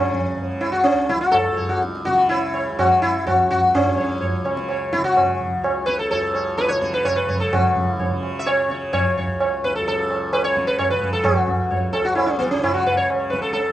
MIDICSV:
0, 0, Header, 1, 4, 480
1, 0, Start_track
1, 0, Tempo, 477327
1, 1843, Time_signature, 4, 2, 24, 8
1, 6626, Tempo, 467290
1, 10466, Tempo, 460123
1, 14006, End_track
2, 0, Start_track
2, 0, Title_t, "Sitar"
2, 0, Program_c, 0, 104
2, 0, Note_on_c, 0, 61, 78
2, 610, Note_on_c, 0, 64, 81
2, 644, Note_off_c, 0, 61, 0
2, 720, Note_off_c, 0, 64, 0
2, 724, Note_on_c, 0, 66, 83
2, 841, Note_on_c, 0, 61, 84
2, 864, Note_off_c, 0, 66, 0
2, 1098, Note_on_c, 0, 64, 88
2, 1108, Note_off_c, 0, 61, 0
2, 1211, Note_off_c, 0, 64, 0
2, 1215, Note_on_c, 0, 66, 85
2, 1322, Note_on_c, 0, 69, 97
2, 1352, Note_off_c, 0, 66, 0
2, 1572, Note_on_c, 0, 73, 36
2, 1701, Note_on_c, 0, 66, 77
2, 1715, Note_off_c, 0, 69, 0
2, 1810, Note_off_c, 0, 73, 0
2, 1823, Note_off_c, 0, 66, 0
2, 2063, Note_on_c, 0, 66, 99
2, 2297, Note_off_c, 0, 66, 0
2, 2303, Note_on_c, 0, 64, 89
2, 2550, Note_on_c, 0, 73, 40
2, 2781, Note_off_c, 0, 73, 0
2, 2799, Note_off_c, 0, 64, 0
2, 2803, Note_on_c, 0, 66, 97
2, 3032, Note_off_c, 0, 66, 0
2, 3036, Note_on_c, 0, 64, 94
2, 3280, Note_off_c, 0, 64, 0
2, 3284, Note_on_c, 0, 66, 97
2, 3513, Note_off_c, 0, 66, 0
2, 3525, Note_on_c, 0, 66, 90
2, 3766, Note_on_c, 0, 61, 74
2, 3773, Note_off_c, 0, 66, 0
2, 3994, Note_on_c, 0, 73, 39
2, 4217, Note_off_c, 0, 73, 0
2, 4230, Note_on_c, 0, 73, 37
2, 4444, Note_off_c, 0, 61, 0
2, 4459, Note_off_c, 0, 73, 0
2, 4470, Note_on_c, 0, 73, 37
2, 4699, Note_off_c, 0, 73, 0
2, 4727, Note_on_c, 0, 73, 38
2, 4947, Note_off_c, 0, 73, 0
2, 4953, Note_on_c, 0, 64, 97
2, 5065, Note_off_c, 0, 64, 0
2, 5069, Note_on_c, 0, 66, 96
2, 5667, Note_on_c, 0, 73, 36
2, 5749, Note_off_c, 0, 66, 0
2, 5885, Note_off_c, 0, 73, 0
2, 5892, Note_on_c, 0, 71, 85
2, 5899, Note_on_c, 0, 73, 38
2, 6020, Note_off_c, 0, 71, 0
2, 6024, Note_on_c, 0, 69, 75
2, 6125, Note_off_c, 0, 73, 0
2, 6129, Note_off_c, 0, 69, 0
2, 6141, Note_on_c, 0, 69, 81
2, 6146, Note_on_c, 0, 73, 37
2, 6364, Note_off_c, 0, 73, 0
2, 6376, Note_on_c, 0, 73, 36
2, 6598, Note_off_c, 0, 73, 0
2, 6608, Note_off_c, 0, 69, 0
2, 6611, Note_on_c, 0, 73, 36
2, 6612, Note_on_c, 0, 71, 91
2, 6711, Note_off_c, 0, 73, 0
2, 6723, Note_on_c, 0, 73, 99
2, 6731, Note_off_c, 0, 71, 0
2, 6844, Note_off_c, 0, 73, 0
2, 6857, Note_on_c, 0, 73, 38
2, 6983, Note_on_c, 0, 71, 91
2, 7086, Note_off_c, 0, 73, 0
2, 7100, Note_on_c, 0, 73, 39
2, 7101, Note_off_c, 0, 73, 0
2, 7101, Note_on_c, 0, 73, 93
2, 7110, Note_off_c, 0, 71, 0
2, 7210, Note_on_c, 0, 71, 85
2, 7230, Note_off_c, 0, 73, 0
2, 7338, Note_on_c, 0, 73, 38
2, 7456, Note_off_c, 0, 71, 0
2, 7460, Note_on_c, 0, 69, 77
2, 7568, Note_off_c, 0, 73, 0
2, 7590, Note_off_c, 0, 69, 0
2, 7590, Note_on_c, 0, 66, 69
2, 8042, Note_off_c, 0, 66, 0
2, 8042, Note_on_c, 0, 64, 69
2, 8068, Note_on_c, 0, 73, 35
2, 8271, Note_off_c, 0, 64, 0
2, 8294, Note_off_c, 0, 73, 0
2, 8477, Note_on_c, 0, 76, 73
2, 8548, Note_off_c, 0, 76, 0
2, 8551, Note_on_c, 0, 73, 88
2, 8791, Note_off_c, 0, 73, 0
2, 8803, Note_on_c, 0, 73, 38
2, 9017, Note_off_c, 0, 73, 0
2, 9029, Note_on_c, 0, 73, 87
2, 9270, Note_off_c, 0, 73, 0
2, 9282, Note_on_c, 0, 73, 37
2, 9500, Note_off_c, 0, 73, 0
2, 9520, Note_on_c, 0, 73, 37
2, 9738, Note_off_c, 0, 73, 0
2, 9762, Note_on_c, 0, 71, 89
2, 9873, Note_off_c, 0, 71, 0
2, 9877, Note_on_c, 0, 69, 75
2, 9990, Note_off_c, 0, 69, 0
2, 10002, Note_on_c, 0, 69, 89
2, 10465, Note_off_c, 0, 69, 0
2, 10469, Note_on_c, 0, 71, 86
2, 10581, Note_off_c, 0, 71, 0
2, 10585, Note_on_c, 0, 73, 97
2, 10820, Note_off_c, 0, 73, 0
2, 10824, Note_on_c, 0, 71, 89
2, 10939, Note_off_c, 0, 71, 0
2, 10943, Note_on_c, 0, 73, 93
2, 11064, Note_off_c, 0, 73, 0
2, 11068, Note_on_c, 0, 71, 87
2, 11296, Note_off_c, 0, 71, 0
2, 11301, Note_on_c, 0, 69, 84
2, 11413, Note_on_c, 0, 66, 89
2, 11430, Note_off_c, 0, 69, 0
2, 11904, Note_on_c, 0, 73, 37
2, 12131, Note_off_c, 0, 73, 0
2, 12135, Note_on_c, 0, 69, 88
2, 12165, Note_off_c, 0, 66, 0
2, 12260, Note_on_c, 0, 66, 84
2, 12267, Note_off_c, 0, 69, 0
2, 12365, Note_off_c, 0, 66, 0
2, 12370, Note_on_c, 0, 64, 81
2, 12486, Note_on_c, 0, 61, 73
2, 12504, Note_off_c, 0, 64, 0
2, 12610, Note_off_c, 0, 61, 0
2, 12614, Note_on_c, 0, 59, 78
2, 12738, Note_off_c, 0, 59, 0
2, 12742, Note_on_c, 0, 61, 73
2, 12870, Note_off_c, 0, 61, 0
2, 12872, Note_on_c, 0, 64, 81
2, 12977, Note_off_c, 0, 64, 0
2, 12981, Note_on_c, 0, 66, 74
2, 13109, Note_off_c, 0, 66, 0
2, 13112, Note_on_c, 0, 71, 80
2, 13219, Note_off_c, 0, 71, 0
2, 13223, Note_on_c, 0, 73, 74
2, 13337, Note_off_c, 0, 73, 0
2, 13567, Note_on_c, 0, 71, 77
2, 13687, Note_off_c, 0, 71, 0
2, 13691, Note_on_c, 0, 69, 72
2, 13794, Note_off_c, 0, 69, 0
2, 13806, Note_on_c, 0, 69, 79
2, 14006, Note_off_c, 0, 69, 0
2, 14006, End_track
3, 0, Start_track
3, 0, Title_t, "Tanpura"
3, 0, Program_c, 1, 104
3, 0, Note_on_c, 1, 37, 56
3, 0, Note_on_c, 1, 42, 54
3, 0, Note_on_c, 1, 49, 61
3, 344, Note_off_c, 1, 49, 0
3, 344, Note_on_c, 1, 49, 55
3, 925, Note_off_c, 1, 37, 0
3, 929, Note_on_c, 1, 37, 59
3, 1500, Note_off_c, 1, 42, 0
3, 1504, Note_on_c, 1, 42, 60
3, 2097, Note_off_c, 1, 49, 0
3, 2097, Note_on_c, 1, 49, 61
3, 2709, Note_off_c, 1, 49, 0
3, 2709, Note_on_c, 1, 49, 59
3, 3267, Note_off_c, 1, 37, 0
3, 3271, Note_on_c, 1, 37, 57
3, 3867, Note_off_c, 1, 42, 0
3, 3871, Note_on_c, 1, 42, 63
3, 4455, Note_off_c, 1, 49, 0
3, 4455, Note_on_c, 1, 49, 57
3, 5011, Note_off_c, 1, 49, 0
3, 5011, Note_on_c, 1, 49, 57
3, 5592, Note_off_c, 1, 37, 0
3, 5596, Note_on_c, 1, 37, 58
3, 6150, Note_off_c, 1, 42, 0
3, 6154, Note_on_c, 1, 42, 61
3, 6747, Note_off_c, 1, 49, 0
3, 6747, Note_on_c, 1, 49, 60
3, 7321, Note_off_c, 1, 49, 0
3, 7321, Note_on_c, 1, 49, 55
3, 7605, Note_off_c, 1, 42, 0
3, 7605, Note_on_c, 1, 42, 58
3, 8182, Note_off_c, 1, 49, 0
3, 8182, Note_on_c, 1, 49, 62
3, 8772, Note_off_c, 1, 49, 0
3, 8772, Note_on_c, 1, 49, 56
3, 9341, Note_off_c, 1, 37, 0
3, 9345, Note_on_c, 1, 37, 60
3, 9909, Note_off_c, 1, 42, 0
3, 9909, Note_on_c, 1, 42, 57
3, 10506, Note_off_c, 1, 49, 0
3, 10506, Note_on_c, 1, 49, 57
3, 11088, Note_off_c, 1, 49, 0
3, 11088, Note_on_c, 1, 49, 56
3, 11658, Note_off_c, 1, 37, 0
3, 11662, Note_on_c, 1, 37, 60
3, 12221, Note_off_c, 1, 42, 0
3, 12226, Note_on_c, 1, 42, 57
3, 12808, Note_off_c, 1, 49, 0
3, 12808, Note_on_c, 1, 49, 57
3, 13389, Note_off_c, 1, 49, 0
3, 13389, Note_on_c, 1, 49, 59
3, 13964, Note_off_c, 1, 37, 0
3, 13968, Note_on_c, 1, 37, 51
3, 14006, Note_off_c, 1, 37, 0
3, 14006, Note_off_c, 1, 42, 0
3, 14006, Note_off_c, 1, 49, 0
3, 14006, End_track
4, 0, Start_track
4, 0, Title_t, "Tabla"
4, 135, Note_on_c, 9, 64, 64
4, 236, Note_off_c, 9, 64, 0
4, 382, Note_on_c, 9, 63, 69
4, 382, Note_on_c, 9, 64, 61
4, 482, Note_off_c, 9, 63, 0
4, 482, Note_off_c, 9, 64, 0
4, 617, Note_on_c, 9, 60, 53
4, 718, Note_off_c, 9, 60, 0
4, 865, Note_on_c, 9, 60, 73
4, 965, Note_off_c, 9, 60, 0
4, 1102, Note_on_c, 9, 37, 58
4, 1203, Note_off_c, 9, 37, 0
4, 1344, Note_on_c, 9, 60, 77
4, 1344, Note_on_c, 9, 64, 68
4, 1445, Note_off_c, 9, 60, 0
4, 1445, Note_off_c, 9, 64, 0
4, 1601, Note_on_c, 9, 64, 53
4, 1701, Note_off_c, 9, 64, 0
4, 1839, Note_on_c, 9, 62, 75
4, 1939, Note_off_c, 9, 62, 0
4, 1963, Note_on_c, 9, 62, 61
4, 2064, Note_off_c, 9, 62, 0
4, 2082, Note_on_c, 9, 37, 58
4, 2182, Note_off_c, 9, 37, 0
4, 2194, Note_on_c, 9, 62, 56
4, 2294, Note_off_c, 9, 62, 0
4, 2327, Note_on_c, 9, 63, 75
4, 2428, Note_off_c, 9, 63, 0
4, 2553, Note_on_c, 9, 60, 56
4, 2654, Note_off_c, 9, 60, 0
4, 2806, Note_on_c, 9, 60, 77
4, 2806, Note_on_c, 9, 64, 66
4, 2906, Note_off_c, 9, 60, 0
4, 2906, Note_off_c, 9, 64, 0
4, 3043, Note_on_c, 9, 64, 48
4, 3143, Note_off_c, 9, 64, 0
4, 3292, Note_on_c, 9, 60, 76
4, 3292, Note_on_c, 9, 64, 66
4, 3392, Note_off_c, 9, 60, 0
4, 3392, Note_off_c, 9, 64, 0
4, 3534, Note_on_c, 9, 64, 55
4, 3635, Note_off_c, 9, 64, 0
4, 3773, Note_on_c, 9, 60, 100
4, 3773, Note_on_c, 9, 64, 87
4, 3873, Note_off_c, 9, 60, 0
4, 3873, Note_off_c, 9, 64, 0
4, 4014, Note_on_c, 9, 64, 64
4, 4114, Note_off_c, 9, 64, 0
4, 4249, Note_on_c, 9, 63, 75
4, 4249, Note_on_c, 9, 64, 65
4, 4349, Note_off_c, 9, 63, 0
4, 4349, Note_off_c, 9, 64, 0
4, 4482, Note_on_c, 9, 60, 57
4, 4583, Note_off_c, 9, 60, 0
4, 4598, Note_on_c, 9, 37, 61
4, 4699, Note_off_c, 9, 37, 0
4, 4714, Note_on_c, 9, 60, 71
4, 4815, Note_off_c, 9, 60, 0
4, 4955, Note_on_c, 9, 37, 54
4, 5056, Note_off_c, 9, 37, 0
4, 5200, Note_on_c, 9, 60, 73
4, 5200, Note_on_c, 9, 64, 69
4, 5301, Note_off_c, 9, 60, 0
4, 5301, Note_off_c, 9, 64, 0
4, 5440, Note_on_c, 9, 64, 53
4, 5540, Note_off_c, 9, 64, 0
4, 5675, Note_on_c, 9, 60, 76
4, 5776, Note_off_c, 9, 60, 0
4, 5912, Note_on_c, 9, 37, 56
4, 6013, Note_off_c, 9, 37, 0
4, 6149, Note_on_c, 9, 63, 67
4, 6249, Note_off_c, 9, 63, 0
4, 6383, Note_on_c, 9, 60, 59
4, 6483, Note_off_c, 9, 60, 0
4, 6622, Note_on_c, 9, 62, 76
4, 6725, Note_off_c, 9, 62, 0
4, 6746, Note_on_c, 9, 62, 59
4, 6848, Note_off_c, 9, 62, 0
4, 6867, Note_on_c, 9, 37, 53
4, 6970, Note_off_c, 9, 37, 0
4, 6973, Note_on_c, 9, 62, 58
4, 7076, Note_off_c, 9, 62, 0
4, 7099, Note_on_c, 9, 60, 79
4, 7099, Note_on_c, 9, 64, 66
4, 7202, Note_off_c, 9, 60, 0
4, 7202, Note_off_c, 9, 64, 0
4, 7350, Note_on_c, 9, 64, 54
4, 7453, Note_off_c, 9, 64, 0
4, 7591, Note_on_c, 9, 60, 96
4, 7591, Note_on_c, 9, 64, 82
4, 7694, Note_off_c, 9, 60, 0
4, 7694, Note_off_c, 9, 64, 0
4, 7827, Note_on_c, 9, 64, 67
4, 7930, Note_off_c, 9, 64, 0
4, 8074, Note_on_c, 9, 63, 69
4, 8074, Note_on_c, 9, 64, 61
4, 8176, Note_off_c, 9, 63, 0
4, 8176, Note_off_c, 9, 64, 0
4, 8311, Note_on_c, 9, 60, 55
4, 8414, Note_off_c, 9, 60, 0
4, 8558, Note_on_c, 9, 60, 70
4, 8661, Note_off_c, 9, 60, 0
4, 8795, Note_on_c, 9, 37, 56
4, 8898, Note_off_c, 9, 37, 0
4, 9036, Note_on_c, 9, 60, 75
4, 9036, Note_on_c, 9, 64, 69
4, 9139, Note_off_c, 9, 60, 0
4, 9139, Note_off_c, 9, 64, 0
4, 9283, Note_on_c, 9, 64, 53
4, 9386, Note_off_c, 9, 64, 0
4, 9518, Note_on_c, 9, 60, 74
4, 9620, Note_off_c, 9, 60, 0
4, 9764, Note_on_c, 9, 37, 56
4, 9866, Note_off_c, 9, 37, 0
4, 9996, Note_on_c, 9, 63, 69
4, 10099, Note_off_c, 9, 63, 0
4, 10239, Note_on_c, 9, 60, 59
4, 10342, Note_off_c, 9, 60, 0
4, 10466, Note_on_c, 9, 60, 72
4, 10571, Note_off_c, 9, 60, 0
4, 10717, Note_on_c, 9, 37, 53
4, 10821, Note_off_c, 9, 37, 0
4, 10952, Note_on_c, 9, 60, 72
4, 10952, Note_on_c, 9, 64, 68
4, 11056, Note_off_c, 9, 60, 0
4, 11056, Note_off_c, 9, 64, 0
4, 11192, Note_on_c, 9, 64, 51
4, 11296, Note_off_c, 9, 64, 0
4, 11426, Note_on_c, 9, 60, 95
4, 11426, Note_on_c, 9, 64, 87
4, 11530, Note_off_c, 9, 60, 0
4, 11530, Note_off_c, 9, 64, 0
4, 11668, Note_on_c, 9, 64, 66
4, 11772, Note_off_c, 9, 64, 0
4, 11916, Note_on_c, 9, 63, 69
4, 11916, Note_on_c, 9, 64, 66
4, 12020, Note_off_c, 9, 63, 0
4, 12020, Note_off_c, 9, 64, 0
4, 12152, Note_on_c, 9, 60, 54
4, 12256, Note_off_c, 9, 60, 0
4, 12396, Note_on_c, 9, 60, 73
4, 12501, Note_off_c, 9, 60, 0
4, 12638, Note_on_c, 9, 37, 56
4, 12742, Note_off_c, 9, 37, 0
4, 12879, Note_on_c, 9, 60, 75
4, 12879, Note_on_c, 9, 64, 68
4, 12984, Note_off_c, 9, 60, 0
4, 12984, Note_off_c, 9, 64, 0
4, 13121, Note_on_c, 9, 64, 51
4, 13225, Note_off_c, 9, 64, 0
4, 13361, Note_on_c, 9, 60, 69
4, 13465, Note_off_c, 9, 60, 0
4, 13602, Note_on_c, 9, 37, 56
4, 13706, Note_off_c, 9, 37, 0
4, 13828, Note_on_c, 9, 63, 69
4, 13933, Note_off_c, 9, 63, 0
4, 14006, End_track
0, 0, End_of_file